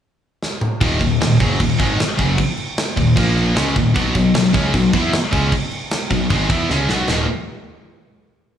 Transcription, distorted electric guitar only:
0.81 D#2 A#2 D#3
1.00 D#2 A#2
1.20 D#2 A#2
1.40 F#2 C#3 F#3
1.59 D#2 A#2
1.79 G#2 D#3 G#3
1.99 muted distorted electric guitar stroke
2.18 F#2 C#3 F#3
2.97 D#2 A#2
3.16 A#2 F3 A#3
3.55 C#3 G#3 C#4
3.76 D#2 A#2
3.94 B2 F#3 B3
4.16 B2 F#3
4.34 B2 F#3
4.53 C#3 G#3 C#4
4.75 B2 F#3
4.93 E3 B3 E4
5.14 muted distorted electric guitar stroke
5.32 C#3 G#3 C#4
6.11 B2 F#3
6.30 G#2 D#3 G#3
6.50 E3 B3 E4
6.70 C#3 G#3 C#4
6.89 B2 F#3 B3
7.08 D#2 A#2 D#3

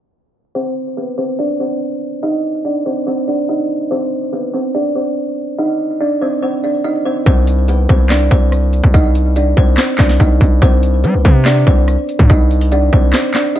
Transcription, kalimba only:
0.55 C4 C5
0.97 B3 B4
1.18 C4 C5
1.39 D4 D5
1.60 C4 C5
2.23 D#4 D#5
2.65 D4 D5
2.86 C4 C5
3.07 C4 C5
3.28 D4 D5
3.49 D#4 D#5
3.91 C4 C5
4.33 B3 B4
4.54 C4 C5
4.75 D4 D5
4.96 C4 C5
5.58 D#4 D#5
6.01 D4 D5
6.22 C4 C5
6.43 C4 C5
6.64 D4 D5
6.84 D#4 D#5
7.05 C4 C5
7.26 C4 C5
7.69 B3 B4
7.89 C4 C5
8.10 D4 D5
8.31 C4 C5
8.94 D#4 D#5
9.36 D4 D5
9.57 C4 C5
9.78 C4 C5
9.99 D4 D5
10.20 D#4 D#5
10.62 C4 C5
11.04 B3 B4
11.25 C4 C5
11.46 D4 D5
11.67 C4 C5
12.30 D#4 D#5
12.72 D4 D5
12.93 C4 C5
13.14 C4 C5
13.35 D4 D5
13.56 D#4 D#5

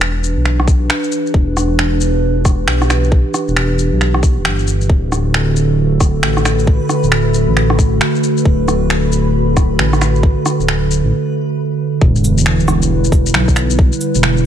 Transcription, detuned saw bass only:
Already playing: E1
0.37 B1
1.34 E1
2.68 B1
3.48 E1
3.92 B1
4.37 D1
4.46 G1
4.89 D1
6.23 A1
7.03 D1
7.48 A1
8.46 D1
9.79 A1
10.59 D1
11.04 A1
12.01 E1
13.35 B1
14.15 E1

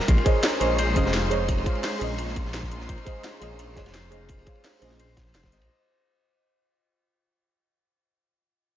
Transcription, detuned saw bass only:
0.08 A#1
0.61 A#1
0.96 F1
2.01 A#1
2.36 A#1
2.89 A#1
3.42 A#1
3.77 F1
4.82 A#1
5.17 A#1
5.35 F1
5.52 G#1
5.61 A#1

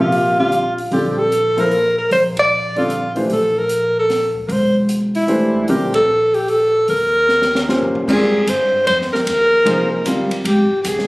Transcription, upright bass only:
Already playing: A#1
0.91 A#1
2.11 A#1
3.30 A#1
4.48 E1
5.69 A#1
6.88 D#2
7.94 muted upright bass stroke
8.08 G#2
8.47 G2
8.86 F2
9.26 D#2
9.65 C2
10.05 G1
10.31 muted upright bass stroke
10.44 G#1
10.71 muted upright bass stroke
10.85 C2
10.98 G#1

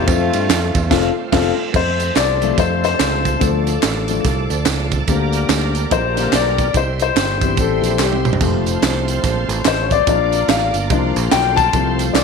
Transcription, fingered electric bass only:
0.08 F2
0.34 G2
0.49 F2
0.75 E2
0.91 F1
1.33 F1
1.74 F2
2.16 C2
2.58 F2
3.00 C#2
3.41 D2
3.83 A1
4.24 C2
4.50 D2
4.66 C#2
5.07 D2
5.49 D2
5.92 A#1
6.32 B1
6.74 C2
7.16 G1
7.57 A1
7.82 A#1
7.99 C2
8.41 F1
8.82 C2
9.24 A#1
9.48 A1
9.65 A1
10.07 A#1
10.48 A1
10.74 G1
10.90 C2
11.16 A#1
11.32 B1
11.73 C2
12.14 C2

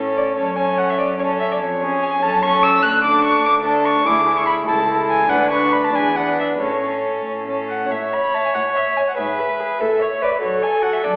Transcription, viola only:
Already playing: C#4
0.38 C#4
0.57 C#4
1.19 C#4
1.81 C#4
2.22 C#4
2.43 C#4
3.04 D4
3.65 D4
4.06 E4
4.26 E4
4.67 E4
4.88 E4
5.30 D4
5.52 D4
5.94 D4
6.15 D4
6.60 C#4
6.80 C#4
7.47 C#4
7.91 C#5
9.17 B4
9.80 A4
10.02 C#5
10.22 B4
10.43 A4

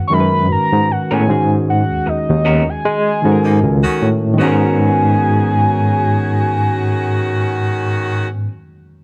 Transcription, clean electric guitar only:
1.11 B3 C#4 F#4 A#4
2.06 muted clean electric guitar stroke
2.45 B3 C#4 F#4 A#4
4.38 B3 C#4 F#4
4.44 A#4

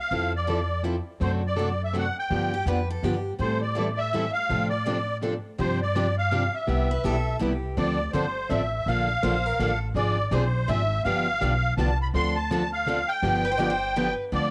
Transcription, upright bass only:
0.11 F2
1.21 F#2
2.31 G2
2.66 F2
3.03 G2
3.39 A2
4.50 A2
5.59 G2
6.68 C2
7.04 B1
7.42 C2
7.77 D2
8.14 G1
8.50 A1
8.86 A#1
9.23 A#1
9.59 A1
9.95 G#1
10.31 B1
10.68 G#1
11.05 G1
11.41 B1
11.77 C2
12.14 D2
13.22 G1
14.32 D2

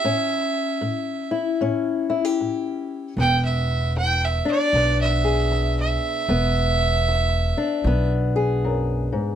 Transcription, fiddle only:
Already playing: E5
3.20 G5
3.45 E5
3.97 G5
4.24 E5
4.50 D5
5.01 E5
5.80 E5

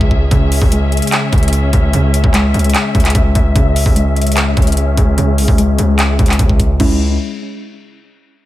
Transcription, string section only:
Already playing: C#4 G#4 E5
0.31 C#4 E5
3.56 C#4 G#4
6.80 C#3 G#3 E4

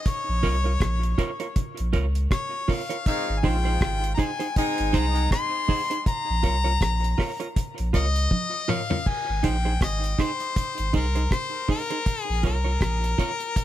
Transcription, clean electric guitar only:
0.43 F4 A#4 C#5
0.64 F4 A#4 C#5
1.18 F4 A#4 C#5
1.40 F4 A#4 C#5
1.93 F4 A#4 C#5
2.68 F4 A#4 C#5
2.89 F4 A#4 C#5
3.43 D#4 G#4 C5
3.65 D#4 G#4 C5
4.18 D#4 G#4 C5
4.39 D#4 G#4 C5
4.93 D#4 G#4 C5
5.68 D#4 G#4 C5
5.90 D#4 G#4 C5
6.43 F4 A#4 C#5
6.64 F4 A#4 C#5
7.18 F4 A#4 C#5
7.40 F4 A#4 C#5
7.93 F4 A#4 C#5
8.68 F4 A#4 C#5
8.90 F4 A#4 C#5
9.43 D#4 G#4 C5
9.65 D#4 G#4 C5
10.18 D#4 G#4 C5
10.93 D#4 G#4 C5
11.15 D#4 G#4 C5
11.68 D#4 G#4 C5
11.90 D#4 G#4 C5
12.43 F4 A#4 C#5
12.64 F4 A#4 C#5
13.18 F4 A#4 C#5

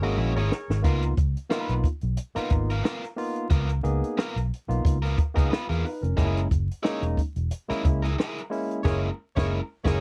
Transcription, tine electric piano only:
0.02 G#3 A#3 C#4 F#4
0.82 A#3 B3 D#4 F4
1.49 A#3 B3 D#4 F4
2.35 A#3 B3 D#4 F4
3.16 A#3 B3 D#4 F4
3.83 A#3 B3 D#4 G#4
4.68 A#3 B3 D#4 F4
5.34 A#3 B3 D#4 G#4
5.69 B3 G#4
5.84 D#4 B4
6.02 C#4 A#4
6.16 G#3 A#3 C#4 E4
6.83 G#3 A#3 C#4 D#4
7.69 G#3 A#3 C#4 E4
8.50 G#3 A#3 C#4 E4
8.84 G#3 A#3 C#4 E4
9.36 G#3 A#3 C#4 E4
9.84 G#3 A#3 C#4 F#4

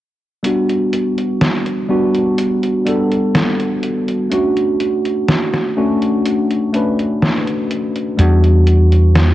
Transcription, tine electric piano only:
0.43 G3 B3 D4 F#4
1.89 G3 B3 D4 F#4
2.85 G3 B3 D4 A4
4.30 A3 C#4 D4 F#4
5.77 A3 C#4 D4 F#4
6.73 A3 C#4 D4 B4
8.18 G3 B3 D4 F#4

